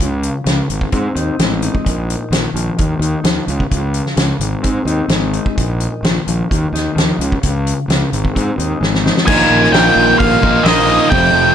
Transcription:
0.00 C#2 C#3, kick, closed hi-hat
0.23 closed hi-hat
0.44 C#2 C#3, snare, closed hi-hat
0.69 G#1 G#2, closed hi-hat
0.81 kick
0.92 G#2 C4, kick, closed hi-hat
1.16 D#2 D#4, closed hi-hat
1.39 A1 G#3, snare, closed hi-hat
1.62 D#4, closed hi-hat
1.75 kick
1.86 A#1 A#2, kick, closed hi-hat
2.10 closed hi-hat
2.31 A#1 D#3, snare, closed hi-hat
2.54 A#1 F3, closed hi-hat
2.77 D#2 D#3, kick, closed hi-hat
2.99 D#2 D#4, closed hi-hat
3.24 D#2 F3, snare, closed hi-hat
3.47 C#2 C#3, closed hi-hat
3.60 kick
3.70 C#2 C#3, kick, closed hi-hat
3.94 closed hi-hat
4.06 snare
4.17 C#2 C#3, snare, closed hi-hat
4.39 G#1 G#2, closed hi-hat
4.63 G#2 C4, kick, closed hi-hat
4.85 D#2 D#4, closed hi-hat
5.08 G#1 G#3, snare, closed hi-hat
5.33 D#4, closed hi-hat
5.46 kick
5.56 A#1 A#2, kick, closed hi-hat
5.80 closed hi-hat
6.03 A#1 D#3, snare, closed hi-hat
6.27 A#1 F3, closed hi-hat
6.49 D#2 D#3, kick, closed hi-hat
6.72 D#2 D#4, snare, closed hi-hat
6.96 D#2 F3, snare, closed hi-hat
7.19 C#2 C#3, closed hi-hat
7.32 kick
7.42 C#2 C#3, kick, closed hi-hat
7.67 closed hi-hat
7.88 C#2 C#3, snare, closed hi-hat
8.12 G#1 G#2, closed hi-hat
8.25 kick
8.35 G#2 C4, kick, closed hi-hat
8.58 D#2 D#4, closed hi-hat
8.80 G#1 G#3, snare
8.95 snare
9.04 D#4, snare
9.17 snare
9.27 A#1 A#2 D#3 A#3 D#4 F4 G#5, kick, crash
9.51 A#1
9.63 snare
9.72 A#1 A#2 D#3 A#3 D#4 F4 G5, snare, open hi-hat
9.96 A#1
10.19 A#1 F5, kick, open hi-hat
10.42 A#1 A#3 D#4 F4, kick
10.63 A#1 D#3 A#3 D#4 F4 D#5, snare, open hi-hat
10.87 A#3 D#4 F4
11.10 F1 F2 C3 F3 A3 G5, kick, open hi-hat
11.14 C4
11.33 F1

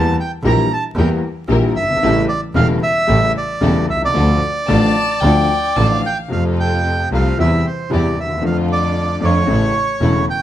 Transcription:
Already playing: E2 E3 G3 A#3 E4 G4 A#4 A5
0.20 G5
0.43 A#1 A#2 E3 G3 A#3 E4 G4 A#4 A#5
0.73 A5
0.95 E2 E3 G3 A#3 E4 G4 A#4 G5
1.48 A#1 A#2 E3 G3 A#3 E4 G4 A#4
1.76 G1 E5
1.83 F#1
1.89 G1
1.96 G#1
2.01 A1 A2 C#3 G3 A3 C#4 E4 G4 A4
2.29 D5
2.55 E1 E2 C#3 G3 A3 C#4 E4 G4 A4 F5
2.83 E5
3.07 A1 A2 C#3 G3 A3 C#4 E4 G4 A4
3.37 D5
3.61 E1 E2 C#3 G3 A3 C#4 E4 G4 A4
3.89 C2 E5
3.95 B1
4.02 C2 D5
4.07 C#2
4.13 D2 D3 F3 A3 D4 F4 A4
4.67 A1 A2 D3 F3 A3 D4 F4 A4 A5
5.20 D2 D3 F3 A3 D4 F4 A4 G5
5.76 A1 A2 D3 F3 A3 D4 F4 A4 A5
5.91 F5
6.06 G5
6.28 F2 C3 F3 A3 C4 F4 A4 F5
6.33 F4
6.60 G5
7.11 C2 C3 F3 A3 C4 F4 A4 F5
7.38 E2 C3 E3 G3 C4 E4 G4 E5
7.67 C5
7.90 E2 C3 E3 G3 C4 E4 G4 D5
8.17 D#2 E5
8.24 D2
8.29 D#2
8.37 E2 D3 F3
8.42 F2 A3 D4 F4 A4 F5
8.72 D5
9.20 F2 D3 F3 A3 D4 F4 A4
9.25 C#5
9.46 A1 A2 C#3 E3 A3 C#4 E4 A4
10.00 E1 E2 C#3 E3 A3 C#4 E4 A4
10.30 G5

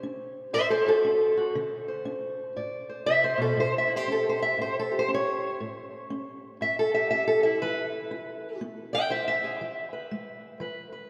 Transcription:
Already playing: C5
0.03 D4
0.53 A2 C5 E5
0.70 A4 C5
0.86 F#4 A4
1.05 D4
1.37 F#4
1.55 D3
1.88 C5
2.05 D4
2.56 A2 D5
2.89 C5
3.06 C3 E5
3.24 C5
3.38 B2 A4
3.57 A2 C5
3.78 E5
3.87 E4
3.96 G4 C5
4.08 C#4
4.12 A4
4.29 C5
4.42 E5
4.58 A2 C5
4.79 A4
4.92 G4
4.99 C5
5.08 C#4
5.14 C#5
5.60 A2
6.10 C#4
6.61 A2 E5
6.79 A4
6.94 G4 E5
7.11 C#4 E5
7.28 A4
7.43 E4 E5
7.62 E3 B4
8.11 E4
8.61 B3
8.93 E5 G5
9.10 E4 C5 E5
9.28 E5
9.44 G#4
9.61 E3
9.93 B4
10.11 G#3
10.60 E3 B4
10.92 B4

